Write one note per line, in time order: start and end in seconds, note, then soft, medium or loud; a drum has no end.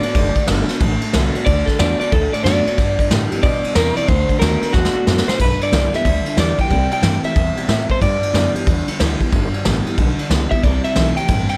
0.00 0.14 A2 loud
0.00 0.14 D3 medium
0.00 0.14 B3 medium
0.00 0.15 F#4 medium
0.00 0.46 D5 loud
0.00 ride medium
0.05 0.16 D4 medium
0.15 0.35 F#1 medium
0.15 0.45 D3 medium
0.15 0.34 D3 medium
0.15 0.34 A3 loud
0.15 kick loud
0.15 ride medium
0.36 0.47 D3 medium
0.36 0.48 A3 medium
0.36 muted upright bass stroke medium
0.36 kick medium
0.36 ride medium
0.47 0.69 G1 loud
0.47 0.68 D3 medium
0.47 0.67 D3 medium
0.47 0.68 A3 medium
0.47 0.67 B3 loud
0.47 0.68 D4 medium
0.47 0.68 F#4 medium
0.47 snare loud
0.47 ride medium
0.69 0.80 D3 medium
0.69 0.80 B3 medium
0.69 0.81 D4 medium
0.69 0.81 F#4 medium
0.69 muted upright bass stroke medium
0.69 snare soft
0.69 ride medium
0.80 1.01 A1 loud
0.80 1.44 A2 loud
0.80 1.00 D3 medium
0.80 1.00 A3 loud
0.80 kick loud
0.80 ride medium
1.01 1.13 D3 medium
1.01 1.13 A3 medium
1.01 ride medium
1.13 1.34 C2 medium
1.13 1.33 D3 medium
1.13 1.34 D3 medium
1.13 1.34 A3 medium
1.13 1.33 B3 medium
1.13 1.35 D4 loud
1.13 1.34 F#4 medium
1.13 snare loud
1.13 ride medium
1.35 1.46 D3 medium
1.35 1.46 B3 medium
1.35 1.47 D4 medium
1.35 1.46 F#4 medium
1.35 ride medium
1.46 1.67 D2 medium
1.46 1.77 D3 medium
1.46 1.66 D3 medium
1.46 1.66 A3 loud
1.46 1.67 D5 loud
1.46 kick loud
1.46 ride medium
1.66 1.79 D3 medium
1.66 1.79 A3 medium
1.66 1.78 A4 medium
1.66 kick medium
1.66 snare soft
1.66 ride medium
1.78 1.99 E2 loud
1.78 1.99 D3 medium
1.78 2.00 A3 medium
1.78 1.99 B3 medium
1.78 2.00 D4 loud
1.78 1.98 F#4 loud
1.78 1.99 D5 medium
1.78 snare loud
1.78 ride medium
1.99 2.11 D3 medium
1.99 2.12 B3 medium
1.99 2.13 D4 medium
1.99 2.11 F#4 medium
1.99 2.12 D5 medium
1.99 muted upright bass stroke medium
1.99 ride medium
2.12 2.32 D2 loud
2.12 2.75 A2 loud
2.12 2.31 D3 loud
2.12 2.31 A3 loud
2.12 2.32 A4 loud
2.12 kick loud
2.12 ride medium
2.33 2.44 D3 medium
2.33 2.44 A3 medium
2.33 2.43 D5 medium
2.33 ride medium
2.43 2.65 F#2 medium
2.43 2.64 D3 medium
2.43 2.65 A3 medium
2.43 2.65 B3 loud
2.43 2.65 D4 loud
2.43 2.64 F#4 loud
2.43 3.08 D5 loud
2.43 snare loud
2.43 ride medium
2.65 2.77 D3 medium
2.65 2.77 B3 medium
2.65 2.78 D4 medium
2.65 2.77 F#4 medium
2.65 muted upright bass stroke medium
2.65 ride medium
2.78 2.97 G2 loud
2.78 2.97 G2 medium
2.78 3.41 G2 medium
2.78 2.97 D3 loud
2.78 kick loud
2.78 snare soft
2.78 ride medium
2.99 3.09 G2 medium
2.99 3.10 D3 medium
2.99 kick medium
2.99 ride medium
3.10 3.29 G2 medium
3.10 3.31 A2 loud
3.10 3.30 D3 medium
3.10 3.29 E3 loud
3.10 3.30 G3 medium
3.10 3.31 B3 loud
3.10 3.30 G4 medium
3.10 snare loud
3.10 ride medium
3.31 3.42 G2 medium
3.31 3.43 E3 loud
3.31 3.44 B3 soft
3.31 3.43 G4 medium
3.31 muted upright bass stroke medium
3.31 ride medium
3.43 3.62 G2 medium
3.43 3.63 B2 medium
3.43 3.75 B2 loud
3.43 3.62 D3 loud
3.43 3.75 D5 loud
3.43 kick loud
3.43 ride medium
3.64 3.75 G2 medium
3.64 3.75 D3 medium
3.64 muted upright bass stroke medium
3.64 ride medium
3.75 3.96 E2 medium
3.75 3.95 G2 medium
3.75 4.08 C3 medium
3.75 3.95 E3 loud
3.75 3.96 A#4 loud
3.75 snare loud
3.75 ride medium
3.97 4.08 G2 medium
3.97 4.08 E3 medium
3.97 4.08 D5 loud
3.97 muted upright bass stroke medium
3.97 ride medium
4.08 4.28 D2 medium
4.08 4.39 D3 loud
4.08 4.27 D3 medium
4.08 4.28 A3 loud
4.08 4.39 C5 loud
4.08 kick loud
4.08 ride medium
4.29 4.40 D3 medium
4.29 4.41 A3 medium
4.29 kick medium
4.29 ride medium
4.39 4.61 D#2 loud
4.39 4.61 D3 medium
4.39 4.60 D3 medium
4.39 4.61 A3 loud
4.39 4.61 B3 loud
4.39 4.61 D4 loud
4.39 4.60 F#4 medium
4.39 4.72 A#4 medium
4.39 snare loud
4.39 ride medium
4.61 4.73 D3 medium
4.61 4.73 B3 medium
4.61 4.74 D4 medium
4.61 4.73 F#4 medium
4.61 muted upright bass stroke medium
4.61 ride medium
4.73 4.94 E2 loud
4.73 5.05 B2 loud
4.73 4.93 D3 loud
4.73 4.94 A3 medium
4.73 5.37 F#4 loud
4.73 kick loud
4.73 snare medium
4.85 snare medium
4.95 5.06 D3 medium
4.95 5.06 A3 medium
4.95 muted upright bass stroke medium
5.07 5.27 F#2 medium
5.07 5.38 A2 loud
5.07 5.26 D3 medium
5.07 5.26 B3 loud
5.07 snare medium
5.18 snare loud
5.27 5.38 D3 medium
5.27 5.39 B3 medium
5.27 5.40 C5 medium
5.27 muted upright bass stroke medium
5.27 snare loud
5.39 5.58 B1 medium
5.39 5.58 G2 medium
5.39 6.03 G2 medium
5.39 5.58 D3 medium
5.39 5.62 B4 medium
5.39 kick loud
5.39 crash loud
5.59 5.71 G2 medium
5.59 5.71 D3 medium
5.59 muted upright bass stroke medium
5.59 ride medium
5.63 5.95 D5 loud
5.72 5.92 C2 loud
5.72 5.91 G2 medium
5.72 5.92 D3 medium
5.72 5.91 E3 medium
5.72 5.93 G3 medium
5.72 5.93 B3 medium
5.72 5.93 G4 medium
5.72 snare loud
5.72 ride medium
5.93 6.03 G2 medium
5.93 6.04 E3 medium
5.93 6.06 B3 soft
5.93 6.05 G4 medium
5.93 6.39 E5 medium
5.93 muted upright bass stroke medium
5.93 snare soft
5.93 ride medium
6.04 6.25 D2 medium
6.04 6.23 G2 medium
6.04 6.24 D3 medium
6.04 6.36 D3 loud
6.04 kick loud
6.04 ride medium
6.25 6.35 G2 medium
6.25 6.36 D3 medium
6.25 muted upright bass stroke medium
6.25 ride medium
6.36 6.58 E2 medium
6.36 6.56 G2 medium
6.36 6.69 D3 medium
6.36 6.56 E3 loud
6.36 6.69 G3 loud
6.36 6.70 B3 medium
6.36 6.70 G4 loud
6.36 6.60 D5 loud
6.36 snare loud
6.36 ride medium
6.58 6.69 G2 medium
6.58 6.69 E3 medium
6.58 6.92 G5 loud
6.58 muted upright bass stroke medium
6.58 kick medium
6.58 ride medium
6.70 6.91 C2 medium
6.70 6.89 C3 medium
6.70 7.34 C3 medium
6.70 6.89 G3 loud
6.70 kick loud
6.70 ride medium
6.91 7.01 C3 medium
6.91 7.02 G3 medium
6.91 7.25 G5 loud
6.91 ride medium
7.01 7.23 G2 medium
7.01 7.22 C3 medium
7.01 7.22 E3 medium
7.01 7.23 G3 medium
7.01 7.22 A3 medium
7.01 7.23 C4 medium
7.01 7.23 E4 loud
7.01 snare loud
7.01 ride medium
7.23 7.35 C3 medium
7.23 7.35 A3 medium
7.23 7.36 C4 soft
7.23 7.35 E4 medium
7.23 7.91 E5 medium
7.23 muted upright bass stroke medium
7.23 ride medium
7.35 7.56 E2 medium
7.35 7.67 B2 medium
7.35 7.55 C3 medium
7.35 7.55 G3 medium
7.35 kick loud
7.35 ride medium
7.56 7.67 C3 medium
7.56 7.68 G3 medium
7.56 muted upright bass stroke medium
7.56 ride medium
7.68 8.00 A2 medium
7.68 7.89 A2 medium
7.68 7.87 C3 medium
7.68 7.88 A3 medium
7.68 snare loud
7.68 ride medium
7.89 8.00 C3 medium
7.89 8.01 A3 medium
7.89 8.02 C5 medium
7.89 muted upright bass stroke medium
7.89 kick medium
7.89 ride medium
8.01 8.64 G2 medium
8.01 8.20 G2 medium
8.01 8.21 G2 medium
8.01 8.20 D3 loud
8.01 8.52 D5 medium
8.01 kick loud
8.01 ride medium
8.22 8.32 G2 medium
8.22 8.33 D3 medium
8.22 muted upright bass stroke medium
8.22 ride medium
8.33 8.54 F#2 medium
8.33 8.53 G2 medium
8.33 8.54 D3 medium
8.33 8.53 E3 medium
8.33 8.54 G3 loud
8.33 8.55 B3 loud
8.33 8.53 G4 medium
8.33 snare loud
8.33 ride medium
8.54 8.66 G2 medium
8.54 8.66 E3 medium
8.54 8.67 B3 soft
8.54 8.66 G4 medium
8.54 muted upright bass stroke medium
8.54 ride medium
8.66 8.87 E2 medium
8.66 8.86 G2 medium
8.66 8.98 D3 loud
8.66 8.86 D3 medium
8.66 kick loud
8.66 ride medium
8.88 8.98 G2 medium
8.88 8.99 D3 medium
8.88 muted upright bass stroke medium
8.88 ride medium
8.99 9.19 D2 medium
8.99 9.18 G2 medium
8.99 9.20 D3 medium
8.99 9.19 E3 loud
8.99 9.20 G3 loud
8.99 9.20 B3 medium
8.99 9.19 G4 loud
8.99 snare loud
8.99 ride medium
9.20 9.31 G2 medium
9.20 9.32 E3 medium
9.20 9.33 B3 medium
9.20 9.32 G4 medium
9.20 muted upright bass stroke medium
9.20 kick medium
9.20 ride medium
9.32 9.53 G1 medium
9.32 9.51 G2 medium
9.32 9.96 G2 medium
9.32 9.51 D3 loud
9.32 kick loud
9.32 ride medium
9.53 9.64 G2 medium
9.53 9.64 D3 medium
9.53 muted upright bass stroke medium
9.53 ride medium
9.64 9.85 A1 medium
9.64 9.84 G2 medium
9.64 9.85 D3 medium
9.64 9.84 E3 medium
9.64 9.85 G3 medium
9.64 9.85 B3 loud
9.64 9.83 G4 medium
9.64 snare loud
9.64 ride medium
9.84 9.97 G2 medium
9.84 9.97 E3 medium
9.84 9.98 B3 soft
9.84 9.97 G4 medium
9.84 muted upright bass stroke medium
9.84 ride medium
9.98 10.17 B1 medium
9.98 10.17 G2 medium
9.98 10.28 D3 loud
9.98 10.17 D3 medium
9.98 kick loud
9.98 ride medium
10.18 10.29 G2 medium
10.18 10.30 D3 medium
10.18 muted upright bass stroke medium
10.18 ride medium
10.29 10.50 C#2 medium
10.29 10.49 G2 medium
10.29 10.50 D3 medium
10.29 10.49 E3 medium
10.29 10.51 G3 medium
10.29 10.51 B3 medium
10.29 10.50 G4 medium
10.29 snare loud
10.29 ride medium
10.51 10.62 G2 medium
10.51 10.62 E3 medium
10.51 10.64 B3 soft
10.51 10.63 G4 medium
10.51 10.63 E5 medium
10.51 muted upright bass stroke medium
10.51 kick medium
10.51 ride medium
10.63 10.83 C2 medium
10.63 11.27 C3 medium
10.63 10.83 C3 medium
10.63 10.83 G3 loud
10.63 10.84 D5 medium
10.63 kick loud
10.63 ride medium
10.84 10.95 C3 medium
10.84 10.95 G3 medium
10.84 11.16 E5 loud
10.84 ride medium
10.95 11.16 B1 loud
10.95 11.15 C3 medium
10.95 11.16 E3 medium
10.95 11.16 G3 medium
10.95 11.16 A3 medium
10.95 11.16 C4 medium
10.95 11.17 E4 medium
10.95 snare loud
10.95 ride medium
11.17 11.28 C3 medium
11.17 11.28 A3 medium
11.17 11.30 C4 soft
11.17 11.29 E4 medium
11.17 11.49 G5 medium
11.17 muted upright bass stroke medium
11.17 ride medium
11.28 11.49 A1 medium
11.28 11.57 G2 medium
11.28 11.48 C3 medium
11.28 11.48 G3 medium
11.28 kick loud
11.28 ride medium
11.49 11.57 C3 medium
11.49 11.57 G3 medium
11.49 11.55 G5 loud
11.49 ride medium